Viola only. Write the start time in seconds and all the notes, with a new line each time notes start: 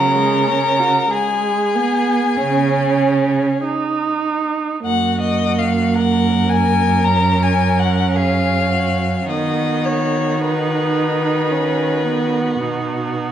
Already playing: F#3
0.16 G#3
0.48 C#4
0.79 F#4
1.11 G#3
1.75 B3
2.37 C#4
3.64 D#4
4.86 A#3
7.06 C#4
9.30 B3
10.41 D#4
11.52 C#4
12.07 B3
12.61 D#4